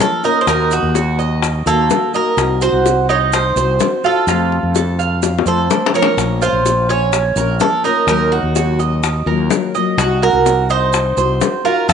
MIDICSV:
0, 0, Header, 1, 7, 480
1, 0, Start_track
1, 0, Tempo, 475436
1, 483, Time_signature, 4, 2, 24, 8
1, 12045, End_track
2, 0, Start_track
2, 0, Title_t, "Cuban tres"
2, 0, Program_c, 0, 25
2, 13, Note_on_c, 0, 69, 84
2, 249, Note_off_c, 0, 69, 0
2, 253, Note_on_c, 0, 70, 84
2, 411, Note_off_c, 0, 70, 0
2, 415, Note_on_c, 0, 72, 73
2, 479, Note_off_c, 0, 72, 0
2, 492, Note_on_c, 0, 70, 96
2, 733, Note_on_c, 0, 66, 83
2, 734, Note_off_c, 0, 70, 0
2, 1687, Note_on_c, 0, 69, 93
2, 1715, Note_off_c, 0, 66, 0
2, 2130, Note_off_c, 0, 69, 0
2, 2176, Note_on_c, 0, 70, 87
2, 2643, Note_off_c, 0, 70, 0
2, 2647, Note_on_c, 0, 72, 92
2, 3127, Note_off_c, 0, 72, 0
2, 3131, Note_on_c, 0, 73, 81
2, 3195, Note_off_c, 0, 73, 0
2, 3369, Note_on_c, 0, 72, 93
2, 4093, Note_off_c, 0, 72, 0
2, 4097, Note_on_c, 0, 69, 83
2, 5519, Note_off_c, 0, 69, 0
2, 5531, Note_on_c, 0, 69, 83
2, 5972, Note_off_c, 0, 69, 0
2, 6010, Note_on_c, 0, 70, 84
2, 6482, Note_off_c, 0, 70, 0
2, 6486, Note_on_c, 0, 72, 86
2, 6964, Note_off_c, 0, 72, 0
2, 6968, Note_on_c, 0, 73, 80
2, 7678, Note_off_c, 0, 73, 0
2, 7682, Note_on_c, 0, 69, 85
2, 7922, Note_off_c, 0, 69, 0
2, 7926, Note_on_c, 0, 70, 79
2, 8158, Note_off_c, 0, 70, 0
2, 8170, Note_on_c, 0, 70, 86
2, 8400, Note_on_c, 0, 66, 68
2, 8413, Note_off_c, 0, 70, 0
2, 9801, Note_off_c, 0, 66, 0
2, 10079, Note_on_c, 0, 66, 90
2, 10328, Note_off_c, 0, 66, 0
2, 10330, Note_on_c, 0, 70, 95
2, 10803, Note_off_c, 0, 70, 0
2, 10807, Note_on_c, 0, 72, 94
2, 11726, Note_off_c, 0, 72, 0
2, 11760, Note_on_c, 0, 70, 79
2, 11999, Note_off_c, 0, 70, 0
2, 12003, Note_on_c, 0, 69, 91
2, 12045, Note_off_c, 0, 69, 0
2, 12045, End_track
3, 0, Start_track
3, 0, Title_t, "Cuban tres"
3, 0, Program_c, 1, 25
3, 0, Note_on_c, 1, 70, 65
3, 229, Note_off_c, 1, 70, 0
3, 244, Note_on_c, 1, 63, 78
3, 473, Note_off_c, 1, 63, 0
3, 485, Note_on_c, 1, 63, 69
3, 949, Note_off_c, 1, 63, 0
3, 963, Note_on_c, 1, 66, 60
3, 1195, Note_off_c, 1, 66, 0
3, 1200, Note_on_c, 1, 75, 68
3, 1666, Note_off_c, 1, 75, 0
3, 1685, Note_on_c, 1, 58, 67
3, 2148, Note_off_c, 1, 58, 0
3, 2164, Note_on_c, 1, 75, 67
3, 2628, Note_off_c, 1, 75, 0
3, 2641, Note_on_c, 1, 66, 66
3, 3106, Note_off_c, 1, 66, 0
3, 3120, Note_on_c, 1, 63, 79
3, 3585, Note_off_c, 1, 63, 0
3, 3604, Note_on_c, 1, 72, 66
3, 4067, Note_off_c, 1, 72, 0
3, 4082, Note_on_c, 1, 65, 81
3, 4309, Note_off_c, 1, 65, 0
3, 4321, Note_on_c, 1, 65, 70
3, 4786, Note_off_c, 1, 65, 0
3, 4799, Note_on_c, 1, 69, 56
3, 5032, Note_off_c, 1, 69, 0
3, 5038, Note_on_c, 1, 77, 68
3, 5504, Note_off_c, 1, 77, 0
3, 5519, Note_on_c, 1, 72, 61
3, 5985, Note_off_c, 1, 72, 0
3, 5998, Note_on_c, 1, 73, 67
3, 6465, Note_off_c, 1, 73, 0
3, 6478, Note_on_c, 1, 65, 63
3, 6945, Note_off_c, 1, 65, 0
3, 6959, Note_on_c, 1, 61, 77
3, 7425, Note_off_c, 1, 61, 0
3, 7443, Note_on_c, 1, 70, 67
3, 7907, Note_off_c, 1, 70, 0
3, 7917, Note_on_c, 1, 63, 76
3, 8152, Note_off_c, 1, 63, 0
3, 8162, Note_on_c, 1, 63, 66
3, 8627, Note_off_c, 1, 63, 0
3, 8639, Note_on_c, 1, 66, 59
3, 8873, Note_off_c, 1, 66, 0
3, 8878, Note_on_c, 1, 75, 66
3, 9346, Note_off_c, 1, 75, 0
3, 9360, Note_on_c, 1, 70, 66
3, 9827, Note_off_c, 1, 70, 0
3, 9841, Note_on_c, 1, 75, 74
3, 10308, Note_off_c, 1, 75, 0
3, 10322, Note_on_c, 1, 66, 65
3, 10788, Note_off_c, 1, 66, 0
3, 10802, Note_on_c, 1, 63, 81
3, 11269, Note_off_c, 1, 63, 0
3, 11284, Note_on_c, 1, 72, 64
3, 11750, Note_off_c, 1, 72, 0
3, 11763, Note_on_c, 1, 65, 76
3, 11991, Note_off_c, 1, 65, 0
3, 12003, Note_on_c, 1, 65, 66
3, 12045, Note_off_c, 1, 65, 0
3, 12045, End_track
4, 0, Start_track
4, 0, Title_t, "Nylon-string guitar"
4, 0, Program_c, 2, 24
4, 0, Note_on_c, 2, 53, 42
4, 5, Note_on_c, 2, 58, 46
4, 13, Note_on_c, 2, 61, 53
4, 20, Note_on_c, 2, 65, 55
4, 224, Note_off_c, 2, 65, 0
4, 229, Note_off_c, 2, 53, 0
4, 234, Note_off_c, 2, 58, 0
4, 236, Note_off_c, 2, 61, 0
4, 236, Note_on_c, 2, 65, 59
4, 248, Note_on_c, 2, 61, 60
4, 256, Note_on_c, 2, 58, 55
4, 469, Note_off_c, 2, 65, 0
4, 470, Note_off_c, 2, 58, 0
4, 470, Note_on_c, 2, 51, 61
4, 476, Note_off_c, 2, 61, 0
4, 482, Note_on_c, 2, 58, 68
4, 502, Note_on_c, 2, 66, 77
4, 1425, Note_off_c, 2, 51, 0
4, 1428, Note_off_c, 2, 58, 0
4, 1445, Note_off_c, 2, 66, 0
4, 1674, Note_on_c, 2, 66, 63
4, 1684, Note_on_c, 2, 63, 59
4, 1694, Note_on_c, 2, 58, 59
4, 1908, Note_off_c, 2, 66, 0
4, 1912, Note_off_c, 2, 58, 0
4, 1913, Note_off_c, 2, 63, 0
4, 1914, Note_on_c, 2, 51, 51
4, 1925, Note_on_c, 2, 58, 47
4, 1932, Note_on_c, 2, 63, 54
4, 1939, Note_on_c, 2, 66, 57
4, 2144, Note_off_c, 2, 66, 0
4, 2148, Note_off_c, 2, 51, 0
4, 2153, Note_off_c, 2, 58, 0
4, 2157, Note_off_c, 2, 63, 0
4, 2157, Note_on_c, 2, 66, 69
4, 2171, Note_on_c, 2, 63, 59
4, 2178, Note_on_c, 2, 58, 54
4, 2388, Note_off_c, 2, 58, 0
4, 2389, Note_off_c, 2, 66, 0
4, 2392, Note_on_c, 2, 60, 70
4, 2396, Note_off_c, 2, 63, 0
4, 2411, Note_on_c, 2, 63, 63
4, 2426, Note_on_c, 2, 66, 70
4, 3353, Note_off_c, 2, 63, 0
4, 3354, Note_off_c, 2, 60, 0
4, 3358, Note_off_c, 2, 66, 0
4, 3597, Note_on_c, 2, 66, 68
4, 3620, Note_on_c, 2, 63, 47
4, 3829, Note_off_c, 2, 66, 0
4, 3839, Note_on_c, 2, 60, 49
4, 3840, Note_off_c, 2, 63, 0
4, 3851, Note_on_c, 2, 63, 49
4, 3859, Note_on_c, 2, 66, 47
4, 4062, Note_off_c, 2, 66, 0
4, 4070, Note_off_c, 2, 60, 0
4, 4074, Note_on_c, 2, 66, 65
4, 4075, Note_off_c, 2, 63, 0
4, 4095, Note_on_c, 2, 63, 52
4, 4307, Note_off_c, 2, 66, 0
4, 4311, Note_on_c, 2, 48, 66
4, 4318, Note_off_c, 2, 63, 0
4, 4322, Note_on_c, 2, 53, 61
4, 4332, Note_on_c, 2, 57, 65
4, 4338, Note_on_c, 2, 60, 72
4, 4347, Note_on_c, 2, 65, 67
4, 5260, Note_off_c, 2, 48, 0
4, 5268, Note_off_c, 2, 57, 0
4, 5269, Note_off_c, 2, 60, 0
4, 5271, Note_off_c, 2, 53, 0
4, 5280, Note_off_c, 2, 65, 0
4, 5509, Note_on_c, 2, 65, 67
4, 5517, Note_on_c, 2, 60, 57
4, 5525, Note_on_c, 2, 57, 58
4, 5530, Note_on_c, 2, 53, 52
4, 5737, Note_off_c, 2, 53, 0
4, 5745, Note_off_c, 2, 57, 0
4, 5745, Note_off_c, 2, 65, 0
4, 5748, Note_off_c, 2, 60, 0
4, 5757, Note_on_c, 2, 57, 52
4, 5764, Note_on_c, 2, 60, 52
4, 5989, Note_off_c, 2, 57, 0
4, 5992, Note_off_c, 2, 60, 0
4, 5994, Note_on_c, 2, 65, 65
4, 6003, Note_on_c, 2, 60, 59
4, 6008, Note_on_c, 2, 57, 55
4, 6014, Note_on_c, 2, 53, 57
4, 6220, Note_off_c, 2, 53, 0
4, 6227, Note_off_c, 2, 65, 0
4, 6232, Note_off_c, 2, 60, 0
4, 6232, Note_on_c, 2, 53, 63
4, 6234, Note_off_c, 2, 57, 0
4, 6246, Note_on_c, 2, 58, 62
4, 6254, Note_on_c, 2, 61, 66
4, 6265, Note_on_c, 2, 65, 77
4, 7192, Note_off_c, 2, 61, 0
4, 7195, Note_off_c, 2, 53, 0
4, 7197, Note_off_c, 2, 58, 0
4, 7206, Note_off_c, 2, 65, 0
4, 7436, Note_on_c, 2, 65, 60
4, 7446, Note_on_c, 2, 61, 58
4, 7455, Note_on_c, 2, 58, 50
4, 7669, Note_off_c, 2, 65, 0
4, 7673, Note_off_c, 2, 58, 0
4, 7673, Note_off_c, 2, 61, 0
4, 7673, Note_on_c, 2, 53, 49
4, 7685, Note_on_c, 2, 58, 51
4, 7689, Note_on_c, 2, 61, 51
4, 7695, Note_on_c, 2, 65, 48
4, 7900, Note_off_c, 2, 65, 0
4, 7907, Note_off_c, 2, 53, 0
4, 7912, Note_on_c, 2, 65, 74
4, 7913, Note_off_c, 2, 58, 0
4, 7915, Note_off_c, 2, 61, 0
4, 7926, Note_on_c, 2, 61, 60
4, 7935, Note_on_c, 2, 58, 52
4, 8147, Note_off_c, 2, 65, 0
4, 8150, Note_on_c, 2, 51, 67
4, 8154, Note_off_c, 2, 61, 0
4, 8158, Note_off_c, 2, 58, 0
4, 8160, Note_on_c, 2, 54, 69
4, 8173, Note_on_c, 2, 58, 73
4, 9102, Note_off_c, 2, 51, 0
4, 9112, Note_off_c, 2, 58, 0
4, 9116, Note_off_c, 2, 54, 0
4, 9354, Note_on_c, 2, 65, 70
4, 9366, Note_on_c, 2, 58, 59
4, 9373, Note_on_c, 2, 54, 52
4, 9588, Note_off_c, 2, 65, 0
4, 9590, Note_off_c, 2, 54, 0
4, 9594, Note_off_c, 2, 58, 0
4, 9594, Note_on_c, 2, 51, 44
4, 9602, Note_on_c, 2, 54, 47
4, 9608, Note_on_c, 2, 58, 49
4, 9616, Note_on_c, 2, 65, 53
4, 9825, Note_off_c, 2, 65, 0
4, 9828, Note_off_c, 2, 51, 0
4, 9832, Note_off_c, 2, 54, 0
4, 9836, Note_off_c, 2, 58, 0
4, 9837, Note_on_c, 2, 65, 70
4, 9846, Note_on_c, 2, 58, 62
4, 9855, Note_on_c, 2, 54, 59
4, 10067, Note_off_c, 2, 58, 0
4, 10070, Note_off_c, 2, 65, 0
4, 10071, Note_on_c, 2, 60, 71
4, 10079, Note_off_c, 2, 54, 0
4, 10091, Note_on_c, 2, 63, 68
4, 10105, Note_on_c, 2, 66, 78
4, 11034, Note_off_c, 2, 63, 0
4, 11035, Note_off_c, 2, 60, 0
4, 11039, Note_off_c, 2, 66, 0
4, 11276, Note_on_c, 2, 66, 65
4, 11297, Note_on_c, 2, 63, 53
4, 11509, Note_off_c, 2, 63, 0
4, 11510, Note_off_c, 2, 66, 0
4, 11510, Note_on_c, 2, 60, 48
4, 11521, Note_on_c, 2, 63, 48
4, 11531, Note_on_c, 2, 66, 51
4, 11742, Note_off_c, 2, 66, 0
4, 11747, Note_off_c, 2, 60, 0
4, 11753, Note_off_c, 2, 63, 0
4, 11754, Note_on_c, 2, 66, 66
4, 11775, Note_on_c, 2, 63, 57
4, 11989, Note_off_c, 2, 66, 0
4, 11992, Note_on_c, 2, 48, 70
4, 12000, Note_off_c, 2, 63, 0
4, 12000, Note_on_c, 2, 53, 73
4, 12011, Note_on_c, 2, 57, 68
4, 12045, Note_off_c, 2, 48, 0
4, 12045, Note_off_c, 2, 53, 0
4, 12045, Note_off_c, 2, 57, 0
4, 12045, End_track
5, 0, Start_track
5, 0, Title_t, "Fretless electric bass"
5, 0, Program_c, 3, 35
5, 473, Note_on_c, 3, 39, 83
5, 819, Note_off_c, 3, 39, 0
5, 834, Note_on_c, 3, 39, 81
5, 1637, Note_off_c, 3, 39, 0
5, 1676, Note_on_c, 3, 39, 83
5, 1906, Note_off_c, 3, 39, 0
5, 2392, Note_on_c, 3, 36, 84
5, 2738, Note_off_c, 3, 36, 0
5, 2749, Note_on_c, 3, 36, 77
5, 3554, Note_off_c, 3, 36, 0
5, 3591, Note_on_c, 3, 36, 81
5, 3823, Note_off_c, 3, 36, 0
5, 4309, Note_on_c, 3, 41, 89
5, 4656, Note_off_c, 3, 41, 0
5, 4673, Note_on_c, 3, 41, 77
5, 5476, Note_off_c, 3, 41, 0
5, 5508, Note_on_c, 3, 41, 86
5, 5741, Note_off_c, 3, 41, 0
5, 6230, Note_on_c, 3, 34, 87
5, 6577, Note_off_c, 3, 34, 0
5, 6588, Note_on_c, 3, 34, 72
5, 7394, Note_off_c, 3, 34, 0
5, 7429, Note_on_c, 3, 34, 81
5, 7662, Note_off_c, 3, 34, 0
5, 8147, Note_on_c, 3, 39, 88
5, 8496, Note_off_c, 3, 39, 0
5, 8508, Note_on_c, 3, 39, 77
5, 9315, Note_off_c, 3, 39, 0
5, 9351, Note_on_c, 3, 39, 82
5, 9584, Note_off_c, 3, 39, 0
5, 10071, Note_on_c, 3, 36, 89
5, 10418, Note_off_c, 3, 36, 0
5, 10429, Note_on_c, 3, 36, 73
5, 11236, Note_off_c, 3, 36, 0
5, 11276, Note_on_c, 3, 36, 84
5, 11508, Note_off_c, 3, 36, 0
5, 12000, Note_on_c, 3, 41, 87
5, 12045, Note_off_c, 3, 41, 0
5, 12045, End_track
6, 0, Start_track
6, 0, Title_t, "Muted nylon-string guitar strokes"
6, 1438, Note_on_c, 9, 29, 53
6, 1539, Note_off_c, 9, 29, 0
6, 3358, Note_on_c, 9, 29, 55
6, 3459, Note_off_c, 9, 29, 0
6, 5272, Note_on_c, 9, 29, 55
6, 5373, Note_off_c, 9, 29, 0
6, 7199, Note_on_c, 9, 29, 61
6, 7300, Note_off_c, 9, 29, 0
6, 9114, Note_on_c, 9, 29, 55
6, 9215, Note_off_c, 9, 29, 0
6, 11039, Note_on_c, 9, 29, 50
6, 11140, Note_off_c, 9, 29, 0
6, 12045, End_track
7, 0, Start_track
7, 0, Title_t, "Drums"
7, 0, Note_on_c, 9, 70, 60
7, 4, Note_on_c, 9, 60, 33
7, 4, Note_on_c, 9, 61, 75
7, 101, Note_off_c, 9, 70, 0
7, 105, Note_off_c, 9, 60, 0
7, 105, Note_off_c, 9, 61, 0
7, 239, Note_on_c, 9, 70, 27
7, 340, Note_off_c, 9, 70, 0
7, 478, Note_on_c, 9, 70, 63
7, 479, Note_on_c, 9, 60, 63
7, 579, Note_off_c, 9, 70, 0
7, 580, Note_off_c, 9, 60, 0
7, 715, Note_on_c, 9, 70, 55
7, 720, Note_on_c, 9, 60, 32
7, 816, Note_off_c, 9, 70, 0
7, 821, Note_off_c, 9, 60, 0
7, 960, Note_on_c, 9, 60, 52
7, 963, Note_on_c, 9, 70, 66
7, 1061, Note_off_c, 9, 60, 0
7, 1064, Note_off_c, 9, 70, 0
7, 1199, Note_on_c, 9, 60, 34
7, 1205, Note_on_c, 9, 70, 26
7, 1300, Note_off_c, 9, 60, 0
7, 1306, Note_off_c, 9, 70, 0
7, 1438, Note_on_c, 9, 60, 61
7, 1446, Note_on_c, 9, 70, 65
7, 1539, Note_off_c, 9, 60, 0
7, 1547, Note_off_c, 9, 70, 0
7, 1682, Note_on_c, 9, 60, 33
7, 1682, Note_on_c, 9, 70, 55
7, 1783, Note_off_c, 9, 60, 0
7, 1783, Note_off_c, 9, 70, 0
7, 1920, Note_on_c, 9, 70, 62
7, 1926, Note_on_c, 9, 60, 32
7, 1926, Note_on_c, 9, 61, 74
7, 2021, Note_off_c, 9, 70, 0
7, 2027, Note_off_c, 9, 60, 0
7, 2027, Note_off_c, 9, 61, 0
7, 2159, Note_on_c, 9, 70, 27
7, 2260, Note_off_c, 9, 70, 0
7, 2400, Note_on_c, 9, 70, 64
7, 2404, Note_on_c, 9, 60, 62
7, 2501, Note_off_c, 9, 70, 0
7, 2505, Note_off_c, 9, 60, 0
7, 2639, Note_on_c, 9, 70, 58
7, 2642, Note_on_c, 9, 60, 29
7, 2740, Note_off_c, 9, 70, 0
7, 2743, Note_off_c, 9, 60, 0
7, 2885, Note_on_c, 9, 60, 53
7, 2886, Note_on_c, 9, 70, 66
7, 2986, Note_off_c, 9, 60, 0
7, 2987, Note_off_c, 9, 70, 0
7, 3123, Note_on_c, 9, 70, 27
7, 3127, Note_on_c, 9, 60, 32
7, 3224, Note_off_c, 9, 70, 0
7, 3228, Note_off_c, 9, 60, 0
7, 3358, Note_on_c, 9, 70, 68
7, 3367, Note_on_c, 9, 60, 61
7, 3459, Note_off_c, 9, 70, 0
7, 3468, Note_off_c, 9, 60, 0
7, 3601, Note_on_c, 9, 70, 54
7, 3605, Note_on_c, 9, 60, 30
7, 3701, Note_off_c, 9, 70, 0
7, 3706, Note_off_c, 9, 60, 0
7, 3834, Note_on_c, 9, 70, 62
7, 3842, Note_on_c, 9, 60, 32
7, 3842, Note_on_c, 9, 61, 81
7, 3935, Note_off_c, 9, 70, 0
7, 3943, Note_off_c, 9, 60, 0
7, 3943, Note_off_c, 9, 61, 0
7, 4078, Note_on_c, 9, 70, 29
7, 4179, Note_off_c, 9, 70, 0
7, 4316, Note_on_c, 9, 70, 66
7, 4325, Note_on_c, 9, 60, 61
7, 4417, Note_off_c, 9, 70, 0
7, 4426, Note_off_c, 9, 60, 0
7, 4565, Note_on_c, 9, 60, 31
7, 4666, Note_off_c, 9, 60, 0
7, 4797, Note_on_c, 9, 70, 66
7, 4803, Note_on_c, 9, 60, 53
7, 4898, Note_off_c, 9, 70, 0
7, 4904, Note_off_c, 9, 60, 0
7, 5042, Note_on_c, 9, 70, 27
7, 5043, Note_on_c, 9, 60, 33
7, 5143, Note_off_c, 9, 70, 0
7, 5144, Note_off_c, 9, 60, 0
7, 5275, Note_on_c, 9, 70, 69
7, 5279, Note_on_c, 9, 60, 65
7, 5376, Note_off_c, 9, 70, 0
7, 5380, Note_off_c, 9, 60, 0
7, 5437, Note_on_c, 9, 60, 90
7, 5515, Note_on_c, 9, 70, 56
7, 5538, Note_off_c, 9, 60, 0
7, 5615, Note_off_c, 9, 70, 0
7, 5759, Note_on_c, 9, 70, 62
7, 5761, Note_on_c, 9, 61, 92
7, 5860, Note_off_c, 9, 70, 0
7, 5862, Note_off_c, 9, 61, 0
7, 5920, Note_on_c, 9, 61, 79
7, 6004, Note_on_c, 9, 70, 27
7, 6021, Note_off_c, 9, 61, 0
7, 6082, Note_on_c, 9, 61, 91
7, 6105, Note_off_c, 9, 70, 0
7, 6183, Note_off_c, 9, 61, 0
7, 6241, Note_on_c, 9, 60, 61
7, 6241, Note_on_c, 9, 70, 66
7, 6342, Note_off_c, 9, 60, 0
7, 6342, Note_off_c, 9, 70, 0
7, 6480, Note_on_c, 9, 70, 57
7, 6482, Note_on_c, 9, 60, 30
7, 6581, Note_off_c, 9, 70, 0
7, 6583, Note_off_c, 9, 60, 0
7, 6721, Note_on_c, 9, 60, 52
7, 6722, Note_on_c, 9, 70, 68
7, 6822, Note_off_c, 9, 60, 0
7, 6823, Note_off_c, 9, 70, 0
7, 6960, Note_on_c, 9, 70, 26
7, 6963, Note_on_c, 9, 60, 33
7, 7061, Note_off_c, 9, 70, 0
7, 7064, Note_off_c, 9, 60, 0
7, 7198, Note_on_c, 9, 70, 64
7, 7199, Note_on_c, 9, 60, 61
7, 7299, Note_off_c, 9, 70, 0
7, 7300, Note_off_c, 9, 60, 0
7, 7433, Note_on_c, 9, 70, 59
7, 7442, Note_on_c, 9, 60, 33
7, 7534, Note_off_c, 9, 70, 0
7, 7543, Note_off_c, 9, 60, 0
7, 7672, Note_on_c, 9, 70, 64
7, 7682, Note_on_c, 9, 60, 33
7, 7682, Note_on_c, 9, 61, 76
7, 7773, Note_off_c, 9, 70, 0
7, 7782, Note_off_c, 9, 60, 0
7, 7782, Note_off_c, 9, 61, 0
7, 7919, Note_on_c, 9, 70, 26
7, 8020, Note_off_c, 9, 70, 0
7, 8155, Note_on_c, 9, 60, 61
7, 8157, Note_on_c, 9, 70, 62
7, 8256, Note_off_c, 9, 60, 0
7, 8258, Note_off_c, 9, 70, 0
7, 8399, Note_on_c, 9, 60, 30
7, 8500, Note_off_c, 9, 60, 0
7, 8638, Note_on_c, 9, 70, 68
7, 8641, Note_on_c, 9, 60, 52
7, 8738, Note_off_c, 9, 70, 0
7, 8742, Note_off_c, 9, 60, 0
7, 8879, Note_on_c, 9, 60, 34
7, 8879, Note_on_c, 9, 70, 27
7, 8980, Note_off_c, 9, 60, 0
7, 8980, Note_off_c, 9, 70, 0
7, 9120, Note_on_c, 9, 70, 68
7, 9123, Note_on_c, 9, 60, 61
7, 9221, Note_off_c, 9, 70, 0
7, 9224, Note_off_c, 9, 60, 0
7, 9360, Note_on_c, 9, 60, 33
7, 9461, Note_off_c, 9, 60, 0
7, 9596, Note_on_c, 9, 60, 33
7, 9596, Note_on_c, 9, 61, 82
7, 9598, Note_on_c, 9, 70, 63
7, 9697, Note_off_c, 9, 60, 0
7, 9697, Note_off_c, 9, 61, 0
7, 9699, Note_off_c, 9, 70, 0
7, 9841, Note_on_c, 9, 70, 29
7, 9942, Note_off_c, 9, 70, 0
7, 10079, Note_on_c, 9, 60, 60
7, 10082, Note_on_c, 9, 70, 67
7, 10180, Note_off_c, 9, 60, 0
7, 10183, Note_off_c, 9, 70, 0
7, 10322, Note_on_c, 9, 60, 30
7, 10423, Note_off_c, 9, 60, 0
7, 10561, Note_on_c, 9, 70, 66
7, 10562, Note_on_c, 9, 60, 56
7, 10661, Note_off_c, 9, 70, 0
7, 10662, Note_off_c, 9, 60, 0
7, 10799, Note_on_c, 9, 70, 27
7, 10806, Note_on_c, 9, 60, 34
7, 10900, Note_off_c, 9, 70, 0
7, 10907, Note_off_c, 9, 60, 0
7, 11035, Note_on_c, 9, 70, 64
7, 11044, Note_on_c, 9, 60, 59
7, 11136, Note_off_c, 9, 70, 0
7, 11145, Note_off_c, 9, 60, 0
7, 11279, Note_on_c, 9, 70, 55
7, 11284, Note_on_c, 9, 60, 33
7, 11380, Note_off_c, 9, 70, 0
7, 11385, Note_off_c, 9, 60, 0
7, 11520, Note_on_c, 9, 70, 64
7, 11524, Note_on_c, 9, 60, 32
7, 11524, Note_on_c, 9, 61, 76
7, 11621, Note_off_c, 9, 70, 0
7, 11625, Note_off_c, 9, 60, 0
7, 11625, Note_off_c, 9, 61, 0
7, 11765, Note_on_c, 9, 70, 26
7, 11866, Note_off_c, 9, 70, 0
7, 12003, Note_on_c, 9, 70, 63
7, 12010, Note_on_c, 9, 60, 64
7, 12045, Note_off_c, 9, 60, 0
7, 12045, Note_off_c, 9, 70, 0
7, 12045, End_track
0, 0, End_of_file